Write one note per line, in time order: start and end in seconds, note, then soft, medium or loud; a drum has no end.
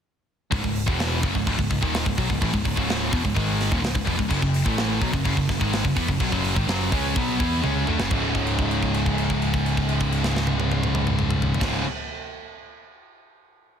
0.51 0.63 C#1 loud
0.51 0.62 C#2 medium
0.51 0.63 G#2 loud
0.51 kick loud
0.51 open hi-hat medium
0.63 0.86 C#1 medium
0.63 0.82 C#2 medium
0.63 0.82 G#2 medium
0.63 kick medium
0.76 open hi-hat medium
0.86 1.20 E1 medium
0.86 1.21 E2 loud
0.86 1.22 B2 loud
0.86 1.22 E3 loud
0.86 kick loud
1.00 snare loud
1.00 open hi-hat medium
1.22 1.34 F#1 loud
1.22 1.33 F#2 loud
1.22 1.34 C#3 loud
1.22 kick loud
1.22 open hi-hat medium
1.35 1.46 C#1 medium
1.35 1.46 C#2 medium
1.35 1.46 G#2 medium
1.35 kick medium
1.47 1.57 C#1 medium
1.47 1.57 C#2 loud
1.47 1.58 G#2 loud
1.47 kick loud
1.47 open hi-hat medium
1.58 1.69 C#1 medium
1.58 1.69 C#2 medium
1.58 1.69 G#2 medium
1.58 kick medium
1.70 1.81 C#1 medium
1.70 1.80 C#2 medium
1.70 1.81 G#2 medium
1.70 kick medium
1.70 open hi-hat medium
1.81 2.04 D#1 loud
1.81 2.04 D#2 medium
1.81 2.04 A#2 loud
1.81 2.05 D#3 loud
1.81 kick medium
1.94 snare loud
1.94 open hi-hat medium
2.05 2.17 C#1 medium
2.05 2.17 C#2 medium
2.05 2.17 G#2 medium
2.05 kick loud
2.18 2.29 B1 medium
2.18 2.28 B2 medium
2.18 2.29 F#3 loud
2.18 kick medium
2.18 open hi-hat medium
2.30 2.41 C#1 medium
2.30 2.41 C#2 medium
2.30 2.41 G#2 medium
2.30 kick medium
2.41 2.53 A1 loud
2.41 2.52 A2 medium
2.41 2.53 E3 loud
2.41 kick loud
2.41 open hi-hat medium
2.53 2.64 C#1 medium
2.53 2.63 C#2 medium
2.53 2.63 G#2 medium
2.53 kick medium
2.65 2.76 C#1 medium
2.65 2.75 C#2 medium
2.65 2.76 G#2 medium
2.65 kick medium
2.65 open hi-hat medium
2.76 3.10 C#1 medium
2.76 3.11 C#2 loud
2.76 3.12 G#2 loud
2.76 3.12 C#3 loud
2.76 kick medium
2.90 snare loud
2.90 open hi-hat medium
3.11 3.23 E1 loud
3.11 3.23 E2 medium
3.11 3.23 B2 medium
3.11 kick loud
3.11 open hi-hat medium
3.24 3.35 C#1 medium
3.24 3.34 C#2 medium
3.24 3.33 G#2 medium
3.24 kick medium
3.35 3.69 G#1 medium
3.35 3.70 G#2 medium
3.35 3.70 D#3 loud
3.35 3.71 G#3 loud
3.35 kick loud
3.35 open hi-hat medium
3.61 snare soft
3.61 open hi-hat medium
3.71 3.83 D#1 loud
3.71 3.81 D#2 medium
3.71 3.82 A#2 loud
3.71 kick loud
3.82 3.94 C#1 medium
3.82 3.93 C#2 medium
3.82 3.93 G#2 medium
3.82 snare loud
3.82 open hi-hat medium
3.94 4.06 C#1 medium
3.94 4.04 C#2 medium
3.94 4.05 G#2 medium
3.94 kick loud
4.05 4.18 E1 loud
4.05 4.16 E2 medium
4.05 4.17 B2 loud
4.05 kick medium
4.05 open hi-hat medium
4.17 4.30 C#1 medium
4.17 4.28 C#2 medium
4.17 4.29 G#2 medium
4.17 kick medium
4.29 4.42 F#1 loud
4.29 4.40 F#2 medium
4.29 4.40 C#3 loud
4.29 kick loud
4.29 crash medium
4.41 4.65 F#1 medium
4.41 4.61 F#2 medium
4.41 4.61 C#3 medium
4.41 kick medium
4.54 open hi-hat medium
4.65 4.99 A1 medium
4.65 5.00 A2 loud
4.65 5.01 E3 loud
4.65 5.01 A3 loud
4.65 kick loud
4.78 snare loud
4.78 open hi-hat medium
5.01 5.13 B1 medium
5.01 5.12 B2 medium
5.01 5.12 F#3 medium
5.01 kick loud
5.01 open hi-hat medium
5.12 5.25 F#1 medium
5.12 5.23 F#2 medium
5.12 5.24 C#3 medium
5.12 kick medium
5.24 5.37 F#1 medium
5.24 5.36 F#2 loud
5.24 5.36 C#3 loud
5.24 kick medium
5.24 open hi-hat medium
5.37 5.48 F#1 medium
5.37 5.48 F#2 medium
5.37 5.49 C#3 medium
5.37 kick medium
5.49 5.60 F#1 medium
5.49 5.60 F#2 medium
5.49 5.60 C#3 medium
5.49 kick medium
5.49 snare soft
5.49 open hi-hat medium
5.60 5.83 G#1 medium
5.60 5.84 G#2 medium
5.60 5.84 D#3 loud
5.60 5.85 G#3 loud
5.60 kick medium
5.73 snare loud
5.73 open hi-hat medium
5.85 5.96 F#1 medium
5.85 5.97 F#2 medium
5.85 5.96 C#3 medium
5.85 kick medium
5.96 6.08 E2 medium
5.96 6.08 E3 medium
5.96 6.09 B3 loud
5.96 kick medium
5.96 open hi-hat medium
6.08 6.20 F#1 medium
6.08 6.20 F#2 medium
6.08 6.21 C#3 medium
6.08 kick medium
6.20 6.32 B1 loud
6.20 6.31 B2 medium
6.20 6.32 F#3 loud
6.20 kick loud
6.20 open hi-hat medium
6.32 6.55 F#1 loud
6.32 6.55 F#2 loud
6.32 6.56 C#3 loud
6.32 6.56 F#3 loud
6.32 kick medium
6.44 open hi-hat medium
6.56 6.67 G#1 medium
6.56 6.67 G#2 medium
6.56 6.68 D#3 loud
6.56 kick loud
6.67 6.90 F#1 medium
6.67 6.91 F#2 medium
6.67 6.91 C#3 medium
6.67 6.92 F#3 loud
6.67 snare loud
6.67 open hi-hat medium
6.92 7.14 C#2 loud
6.92 7.15 C#3 medium
6.92 7.15 G#3 medium
6.92 7.16 C#4 loud
6.92 kick loud
6.92 open hi-hat medium
7.15 7.38 B1 medium
7.15 7.39 B2 loud
7.15 7.38 F#3 loud
7.15 7.38 B3 loud
7.15 kick loud
7.15 open hi-hat medium
7.39 7.62 E2 loud
7.39 7.62 E3 medium
7.39 7.62 B3 medium
7.39 7.63 E4 loud
7.39 kick loud
7.39 open hi-hat medium
7.62 7.86 C#2 loud
7.62 7.86 C#3 medium
7.62 7.86 G#3 loud
7.62 7.87 C#4 loud
7.62 high tom medium
7.86 7.99 D2 medium
7.86 7.98 D3 medium
7.86 7.99 A3 medium
7.86 mid tom medium
7.98 8.10 F#1 loud
7.98 8.09 F#2 medium
7.98 8.10 C#3 loud
7.98 snare loud
8.10 11.52 C#1 loud
8.10 11.59 C#2 medium
8.10 11.62 G#2 loud
8.10 kick loud
8.10 crash medium
8.14 11.63 C#3 loud
8.35 kick medium
8.35 crash soft
8.47 crash soft
8.59 kick medium
8.59 crash soft
8.71 crash soft
8.82 kick medium
8.82 crash soft
8.94 crash medium
9.06 kick medium
9.06 crash medium
9.18 crash medium
9.30 kick medium
9.30 crash medium
9.42 crash medium
9.54 kick medium
9.54 crash medium
9.66 crash medium
9.77 kick medium
9.77 crash medium
9.89 crash medium
10.00 kick medium
10.00 crash medium
10.12 crash medium
10.24 snare medium
10.36 snare medium
10.47 high tom medium
10.60 high tom medium
10.71 high tom loud
10.83 mid tom loud
10.95 mid tom loud
11.07 mid tom medium
11.19 mid tom loud
11.30 mid tom loud
11.42 floor tom loud
11.54 floor tom loud
11.60 11.81 C#1 medium
11.60 11.82 C#2 medium
11.60 11.83 G#2 loud
11.60 11.84 C#3 loud
11.60 kick loud
11.60 snare loud
11.60 crash loud